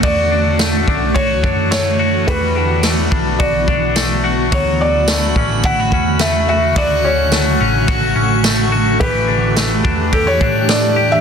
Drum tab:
RD |x-x-x-x-|x-x-x-x-|x-x-x-x-|x-x-x-x-|
TB |--x---x-|--x---x-|--x---x-|--x---x-|
SD |--o---o-|--o---o-|--o---o-|--o---o-|
BD |o--ooo--|o--ooo--|o--ooo--|o---o---|

RD |x-x-x-x-|
TB |--x---x-|
SD |--o---o-|
BD |o--ooo--|